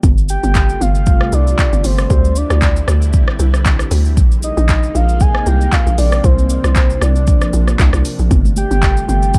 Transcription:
0.03 0.38 G1 loud
0.03 2.08 C3 medium
0.03 4.13 G3 medium
0.03 2.08 A3 medium
0.03 2.08 F4 medium
0.03 kick loud
0.03 shaker medium
0.18 shaker medium
0.29 0.83 G5 loud
0.29 shaker loud
0.43 0.75 G1 loud
0.43 shaker medium
0.55 kick loud
0.55 clap medium
0.55 shaker medium
0.69 shaker medium
0.81 1.25 G1 loud
0.81 1.35 F5 loud
0.81 shaker medium
0.95 shaker medium
1.06 kick loud
1.06 shaker medium
1.21 cross-stick loud
1.32 1.55 C2 medium
1.32 1.87 D5 loud
1.32 shaker loud
1.47 shaker medium
1.58 kick loud
1.58 clap medium
1.58 shaker medium
1.73 1.83 G1 medium
1.73 shaker medium
1.84 2.06 G1 medium
1.84 2.11 C5 medium
1.84 open hi-hat medium
1.84 shaker medium
1.98 cross-stick loud
1.98 shaker medium
2.10 2.44 D2 loud
2.10 4.15 D3 medium
2.10 4.15 C4 medium
2.10 4.15 E4 loud
2.10 2.39 C5 loud
2.10 kick loud
2.10 shaker medium
2.25 shaker medium
2.36 2.88 D5 medium
2.36 shaker loud
2.50 2.82 D2 loud
2.50 cross-stick loud
2.50 shaker medium
2.62 kick loud
2.62 clap medium
2.62 shaker medium
2.76 shaker soft
2.88 3.22 D2 loud
2.88 cross-stick loud
2.88 shaker medium
3.02 shaker medium
3.13 kick loud
3.13 shaker medium
3.28 cross-stick loud
3.39 3.84 C2 medium
3.39 shaker medium
3.54 cross-stick medium
3.54 shaker medium
3.65 kick loud
3.65 clap medium
3.65 shaker medium
3.79 cross-stick loud
3.79 shaker medium
3.91 4.19 D2 medium
3.91 open hi-hat medium
3.91 shaker loud
4.05 shaker medium
4.17 4.51 A#1 loud
4.17 8.27 C3 medium
4.17 6.22 G#3 medium
4.17 8.27 A#3 medium
4.17 6.22 D#4 loud
4.17 kick loud
4.17 shaker medium
4.32 shaker soft
4.43 4.97 D#5 loud
4.43 shaker loud
4.57 4.89 A#1 loud
4.57 shaker medium
4.69 kick loud
4.69 clap medium
4.69 shaker medium
4.83 shaker soft
4.95 5.39 A#1 loud
4.95 5.23 F5 loud
4.95 shaker medium
5.09 shaker medium
5.20 5.48 G#5 loud
5.20 kick loud
5.20 shaker medium
5.35 cross-stick loud
5.46 5.69 C2 medium
5.46 5.74 G5 loud
5.46 shaker medium
5.61 shaker medium
5.72 5.98 F5 loud
5.72 kick loud
5.72 clap medium
5.72 shaker medium
5.86 5.96 A#1 medium
5.86 shaker medium
5.98 6.20 A#1 loud
5.98 6.26 D5 loud
5.98 open hi-hat medium
5.98 shaker medium
6.12 cross-stick loud
6.12 shaker medium
6.24 6.58 C2 loud
6.24 8.29 F3 medium
6.24 8.29 D4 loud
6.24 7.04 C5 loud
6.24 kick loud
6.24 shaker medium
6.39 shaker medium
6.50 shaker loud
6.64 6.96 C2 medium
6.64 cross-stick loud
6.64 shaker medium
6.75 kick loud
6.75 clap medium
6.75 shaker medium
6.90 shaker soft
7.01 7.36 C2 loud
7.01 8.05 D5 loud
7.01 cross-stick loud
7.01 shaker medium
7.16 shaker medium
7.27 kick loud
7.27 shaker medium
7.41 cross-stick loud
7.41 shaker soft
7.53 7.75 A#1 medium
7.53 shaker medium
7.68 cross-stick medium
7.68 shaker medium
7.79 7.91 C2 loud
7.79 kick loud
7.79 clap loud
7.79 shaker medium
7.93 8.03 C2 loud
7.93 cross-stick medium
7.93 shaker medium
8.05 open hi-hat medium
8.05 shaker loud
8.19 8.29 A#1 medium
8.19 shaker medium
8.31 8.65 G1 loud
8.31 9.39 C3 medium
8.31 9.39 G3 medium
8.31 9.39 A3 medium
8.31 9.39 F4 medium
8.31 kick loud
8.31 low conga medium
8.31 shaker medium
8.45 high conga medium
8.45 shaker medium
8.56 9.05 G5 loud
8.56 high conga medium
8.56 shaker loud
8.71 9.03 G1 loud
8.71 shaker medium
8.82 kick loud
8.82 clap medium
8.82 shaker medium
8.97 shaker soft
9.09 9.39 G1 loud
9.09 9.39 G5 loud
9.09 shaker medium
9.23 shaker medium
9.34 kick loud
9.34 low conga medium
9.34 shaker medium

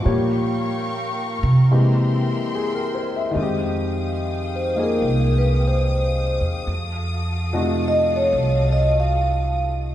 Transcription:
0.02 1.41 A#2 medium
0.02 1.70 F3 soft
0.02 1.71 G3 soft
0.02 1.70 A#3 soft
0.02 3.33 A#4 medium
0.02 1.72 C#5 soft
0.02 1.69 F5 medium
0.02 1.68 G5 medium
0.02 1.69 C#6 medium
0.08 1.71 G4 soft
1.43 2.23 C3 medium
1.71 3.37 E3 soft
1.71 3.33 G#3 soft
1.71 3.38 A#3 soft
1.71 3.36 C4 soft
1.71 3.38 G4 soft
1.71 3.36 E5 medium
1.71 3.36 G5 medium
1.71 3.36 C6 medium
2.55 2.94 G#4 soft
2.75 3.11 A#4 soft
2.95 3.21 C5 soft
3.16 3.45 E5 medium
3.31 4.98 F2 medium
3.31 6.66 D#3 medium
3.31 6.67 G#3 soft
3.37 6.69 C4 soft
3.37 4.76 D#4 soft
3.37 6.66 F5 medium
3.37 6.66 G5 medium
3.37 9.95 D#6 medium
3.43 6.72 G4 medium
4.56 4.79 C5 medium
4.76 6.69 A#3 soft
4.76 6.69 D#4 soft
4.76 6.69 F4 soft
4.76 6.70 G#4 soft
4.83 5.31 A#4 medium
5.02 6.38 C2 medium
5.38 5.61 B4 medium
5.67 6.42 C5 medium
6.41 6.66 E2 medium
6.67 8.30 F2 medium
6.71 9.95 F#4 medium
6.71 9.95 A4 medium
6.71 9.95 F5 medium
7.53 9.95 C3 soft
7.53 9.95 F3 medium
7.53 9.95 A3 soft
7.53 9.95 D#4 medium
7.53 9.95 F#4 medium
7.88 8.11 D#5 medium
8.16 8.63 C#5 medium
8.33 9.95 C2 medium
8.73 8.94 D#5 medium
9.00 9.73 F5 medium

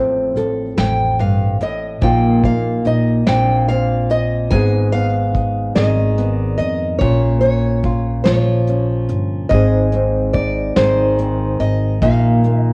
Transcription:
0.00 0.32 A1 medium
0.00 0.77 A2 medium
0.00 1.22 F3 medium
0.00 1.97 C4 medium
0.00 0.36 A4 medium
0.36 0.75 A1 medium
0.36 1.98 A4 medium
0.36 closed hi-hat medium
0.77 1.98 A1 medium
0.77 1.19 F2 medium
0.77 1.18 G5 medium
0.77 snare medium
0.77 closed hi-hat medium
1.19 1.60 G2 medium
1.19 1.60 F5 medium
1.19 closed hi-hat soft
1.61 2.02 A2 medium
1.61 2.02 D#5 medium
1.61 closed hi-hat soft
2.02 2.81 A#1 medium
2.02 3.26 A#2 medium
2.02 2.44 A#3 medium
2.02 2.85 D#4 medium
2.02 3.23 F4 medium
2.02 2.43 G5 medium
2.02 kick loud
2.02 closed hi-hat medium
2.44 3.22 A#3 medium
2.44 2.85 F5 medium
2.44 kick medium
2.44 closed hi-hat medium
2.85 3.25 A#1 medium
2.85 3.22 D#4 medium
2.85 3.26 D#5 medium
2.85 closed hi-hat medium
3.27 4.48 A#1 medium
3.27 4.52 A#2 medium
3.27 3.69 C4 medium
3.27 4.11 D4 medium
3.27 4.48 F4 medium
3.27 3.67 G5 medium
3.27 snare medium
3.27 closed hi-hat medium
3.68 4.48 C4 medium
3.68 4.09 F5 medium
3.68 closed hi-hat soft
4.10 4.51 D#5 medium
4.10 closed hi-hat medium
4.50 5.72 G#1 loud
4.50 6.97 G#2 medium
4.50 4.93 B3 medium
4.50 5.34 D#4 medium
4.50 4.90 G#5 loud
4.50 kick medium
4.50 closed hi-hat medium
4.54 5.76 G#4 medium
4.92 6.17 B3 medium
4.92 5.75 F5 medium
4.92 closed hi-hat soft
5.35 6.97 D#4 medium
5.35 kick medium
5.35 closed hi-hat soft
5.75 6.55 G#1 loud
5.75 7.01 D#3 medium
5.75 6.97 G#4 medium
5.75 6.34 D#5 medium
5.75 snare medium
5.75 closed hi-hat medium
6.18 6.96 B3 medium
6.18 closed hi-hat soft
6.34 6.56 D5 medium
6.58 6.99 F2 medium
6.58 6.98 D#5 medium
6.58 closed hi-hat soft
6.99 8.22 A#1 loud
6.99 9.52 A#2 medium
6.99 7.42 C#4 medium
6.99 7.39 C#5 medium
6.99 kick medium
6.99 closed hi-hat medium
7.03 7.84 F4 medium
7.41 8.68 C#4 medium
7.41 8.23 C#5 medium
7.41 closed hi-hat soft
7.83 8.27 F4 medium
7.83 kick medium
7.83 closed hi-hat medium
8.24 9.06 A#1 loud
8.24 9.47 F3 medium
8.24 9.15 C#5 medium
8.24 snare medium
8.24 closed hi-hat medium
8.28 9.47 F4 medium
8.67 9.47 C#4 medium
8.67 closed hi-hat soft
9.09 9.49 G1 medium
9.09 closed hi-hat medium
9.49 10.73 G#1 loud
9.49 11.98 G#2 medium
9.49 9.93 C4 medium
9.49 10.33 D#5 medium
9.49 kick medium
9.49 closed hi-hat medium
9.53 10.34 D#4 medium
9.53 10.76 G#4 medium
9.92 11.18 C4 medium
9.92 closed hi-hat medium
10.33 11.98 D#4 medium
10.33 10.76 D5 medium
10.33 kick medium
10.33 closed hi-hat medium
10.76 11.56 G#1 loud
10.76 12.73 D#3 medium
10.76 11.98 G#4 medium
10.76 11.60 C5 medium
10.76 snare medium
10.76 closed hi-hat medium
11.18 11.98 C4 medium
11.18 closed hi-hat soft
11.60 12.00 G#1 medium
11.60 11.99 D#5 medium
11.60 closed hi-hat soft
12.02 12.73 A#1 loud
12.02 12.73 A#2 medium
12.02 12.44 A#3 medium
12.02 12.73 D#4 medium
12.02 12.73 F4 medium
12.02 12.60 F5 medium
12.02 kick medium
12.02 closed hi-hat medium
12.44 12.73 A#3 medium
12.44 closed hi-hat soft
12.60 12.73 D#5 medium

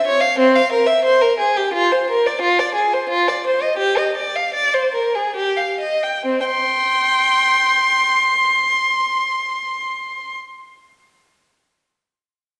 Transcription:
0.07 0.22 C#5 medium
0.21 0.38 F5 medium
0.39 0.55 C4 medium
0.55 0.71 F5 medium
0.72 0.88 A#4 medium
0.87 1.03 E5 medium
1.05 1.20 C5 medium
1.22 1.38 A#4 medium
1.39 1.55 G#4 medium
1.57 1.74 G4 medium
1.73 1.91 F4 medium
1.92 2.09 C5 medium
2.10 2.26 A#4 medium
2.27 2.44 D5 medium
2.41 2.59 F4 medium
2.59 2.77 D5 medium
2.74 2.93 G#4 medium
2.94 3.11 C5 medium
3.09 3.27 F4 medium
3.28 3.46 D5 medium
3.46 3.64 C5 medium
3.62 3.81 D#5 soft
3.77 3.97 G4 medium
3.98 4.17 D#5 medium
4.17 4.36 D5 soft
4.36 4.56 F5 soft
4.54 4.74 D5 medium
4.74 4.95 C5 medium
4.94 5.14 A#4 soft
5.15 5.36 G#4 soft
5.36 5.57 G4 medium
5.57 5.80 F5 soft
5.80 6.03 D#5 soft
6.03 6.25 G5 soft
6.25 6.46 C4 medium
6.44 8.12 G5 medium
6.44 10.35 C6 medium

